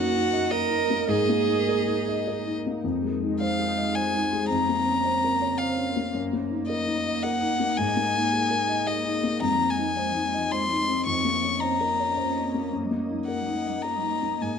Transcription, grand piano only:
0.00 1.05 F#2 medium
0.00 0.90 A#3 medium
0.00 0.13 D#4 medium
0.00 0.24 A#4 medium
0.13 0.43 D#4 medium
0.32 0.63 D#5 medium
0.51 0.82 A#4 medium
0.70 1.01 D#4 medium
0.90 1.09 A#3 medium
1.08 2.79 G#2 medium
1.29 1.60 A#3 medium
1.49 1.79 D#4 medium
1.69 1.99 A#4 medium
1.87 2.18 D#4 medium
2.08 2.38 D#5 medium
2.27 2.57 A#4 medium
2.47 2.76 D#4 medium
2.66 2.84 A#3 soft
2.84 4.46 F2 medium
3.03 3.32 G#3 soft
3.22 3.51 D#4 soft
3.41 3.69 C5 soft
3.59 3.88 G#4 medium
3.77 4.06 D#5 soft
3.95 4.24 C5 soft
4.14 4.43 D#4 soft
4.33 4.50 G#3 soft
4.51 6.10 F2 medium
4.69 4.97 A#3 soft
4.87 5.15 C#4 soft
5.05 5.33 C5 medium
5.24 5.52 A#4 soft
5.42 5.70 C#5 soft
5.61 5.89 C5 soft
5.78 6.07 C#4 soft
5.96 6.14 A#3 soft
6.14 7.74 F#2 medium
6.33 6.62 A#3 soft
6.51 6.80 D#4 soft
6.69 6.98 A#4 medium
6.87 7.16 D#4 medium
7.06 7.35 D#5 soft
7.24 7.53 A#4 soft
7.43 7.71 D#4 soft
7.60 7.78 A#3 soft
7.79 9.38 G#2 medium
7.96 8.25 A#3 soft
8.14 8.43 D#4 soft
8.33 8.62 G#4 medium
8.50 8.80 A#4 medium
8.69 8.98 D#5 medium
8.87 9.16 G#4 medium
9.05 9.34 D#4 soft
9.23 9.42 A#3 soft
9.41 11.02 F2 medium
9.60 9.89 C4 soft
9.78 10.07 D#4 soft
9.96 10.26 C5 soft
10.14 10.44 D#4 soft
10.34 10.63 D#5 medium
10.52 10.81 C5 soft
10.70 10.99 D#4 soft
10.88 11.06 C4 soft
11.06 12.68 F2 medium
11.25 11.54 A#3 soft
11.44 11.73 C#4 soft
11.62 11.91 C5 soft
11.81 12.09 A#4 soft
12.00 12.28 C#5 soft
12.17 12.46 C5 soft
12.36 12.65 C#4 soft
12.54 12.72 A#3 soft
12.73 14.36 F#2 soft
12.91 13.20 A#3 soft
13.10 13.38 D#4 soft
13.28 13.57 A#4 soft
13.47 13.76 D#4 soft
13.65 13.94 D#5 soft
13.84 14.14 A#4 soft
14.03 14.33 D#4 soft
14.22 14.40 A#3 soft
14.41 14.59 G#2 soft

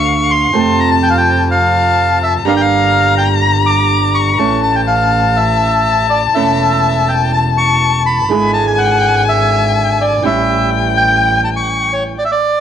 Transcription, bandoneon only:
0.00 0.31 C#6 medium
0.31 0.80 C6 medium
0.80 0.90 A#5 medium
0.92 0.97 A5 medium
1.03 1.09 G5 medium
1.10 1.16 F5 medium
1.18 1.48 G5 medium
1.51 2.18 F5 medium
2.23 2.33 E5 medium
2.48 2.53 F5 medium
2.57 2.61 G5 medium
2.61 3.14 F5 medium
3.18 3.28 G5 medium
3.41 3.52 A#5 medium
3.66 4.16 D6 medium
4.14 4.60 C#6 medium
4.63 4.76 A5 medium
4.76 4.81 G5 medium
4.87 5.38 F5 medium
5.37 6.07 E5 medium
6.10 6.21 D5 medium
6.35 7.11 E5 medium
7.09 7.32 G5 medium
7.33 7.44 A5 medium
7.58 8.03 C#6 medium
8.06 8.51 B5 medium
8.54 8.66 A5 medium
8.67 8.80 G#5 medium
8.78 9.24 F#5 medium
9.29 10.02 E5 medium
10.01 10.23 D5 medium
10.26 10.70 E5 medium
10.97 11.41 G5 medium
11.44 11.50 A5 medium
11.56 11.93 C#6 medium
11.93 12.03 C#5 medium
12.18 12.24 D5 medium
12.25 12.31 E5 medium
12.31 12.60 D5 medium

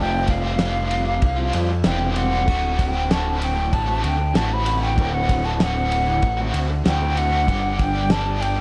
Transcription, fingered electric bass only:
0.00 1.18 F1 loud
1.22 1.51 C2 medium
1.54 1.83 F2 loud
1.86 2.48 E1 loud
2.48 3.69 D1 loud
3.73 4.02 A1 medium
4.04 4.33 D2 loud
4.36 4.99 A1 medium
4.98 6.19 D1 loud
6.23 6.51 A1 loud
6.53 6.82 D2 loud
6.86 7.49 D2 medium
7.48 8.61 G1 loud

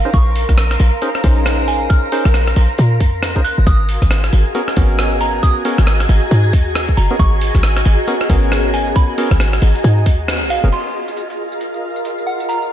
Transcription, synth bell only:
0.14 0.29 C#6 medium
1.68 1.79 G#5 medium
1.90 2.06 F6 loud
3.44 3.56 F#6 medium
3.67 3.82 D#6 medium
5.21 5.32 A#5 medium
5.43 5.59 D#6 medium
6.97 7.09 A#5 medium
7.19 7.35 C#6 medium
8.74 8.85 G#5 medium
8.96 9.11 B5 medium
10.50 10.62 F5 medium
10.73 10.88 C6 medium
12.27 12.38 F#5 medium
12.49 12.64 A#5 medium

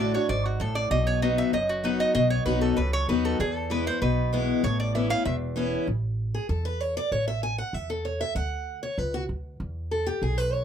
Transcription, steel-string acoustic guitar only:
0.00 0.26 A2 medium
0.00 0.13 D3 medium
0.00 0.13 A3 medium
0.00 0.13 D4 medium
0.00 0.13 F#4 medium
0.14 0.29 D4 soft
0.14 0.29 F#4 medium
0.29 0.59 G#2 medium
0.60 0.90 A2 medium
0.91 1.50 B2 medium
1.22 1.52 F#3 medium
1.22 1.52 B3 medium
1.22 1.52 D#4 medium
1.22 1.52 F#4 medium
1.53 2.12 F#2 medium
1.84 2.13 F#3 medium
1.84 2.14 B3 medium
1.84 2.14 D#4 medium
1.84 2.14 F#4 medium
2.15 2.74 B2 loud
2.46 2.76 F#3 medium
2.46 2.76 B3 medium
2.46 2.76 D#4 medium
2.46 2.76 F#4 medium
2.78 3.37 F#2 medium
3.09 3.38 F#3 medium
3.09 3.38 B3 medium
3.09 3.39 D#4 medium
3.09 3.39 F#4 loud
3.40 3.99 E2 medium
3.70 3.85 E3 medium
3.70 3.86 G#3 medium
3.70 3.86 B3 medium
3.70 3.85 E4 medium
3.86 4.02 B3 soft
3.86 4.01 E4 medium
4.02 4.61 B2 medium
4.33 4.62 E3 medium
4.33 4.62 G#3 medium
4.33 4.63 B3 loud
4.33 4.63 E4 loud
4.64 5.23 A2 medium
4.95 5.10 E3 medium
4.95 5.10 B3 medium
4.95 5.10 C#4 medium
4.95 5.08 E4 medium
5.10 5.25 C#4 soft
5.10 5.25 E4 medium
5.25 5.85 E2 medium
5.56 5.86 E3 medium
5.56 5.86 B3 medium
5.56 5.86 C#4 medium
5.56 5.87 E4 loud
6.34 6.49 G#4 medium
6.49 6.65 A4 medium
6.65 6.80 B4 medium
6.80 6.96 C#5 medium
6.97 7.12 D5 loud
7.12 7.27 C#5 medium
7.28 7.43 E5 medium
7.43 7.58 G#5 loud
7.58 7.74 F#5 medium
7.74 7.89 E5 medium
7.90 8.05 A4 medium
8.05 8.20 C#5 medium
8.21 8.35 E5 loud
8.36 8.79 F#5 loud
8.83 8.98 C#5 medium
8.98 9.13 B4 medium
9.14 9.23 F#4 loud
9.91 10.06 A4 medium
10.07 10.22 G4 medium
10.23 10.38 G#4 medium
10.38 10.53 B4 loud
10.53 10.64 C#5 medium

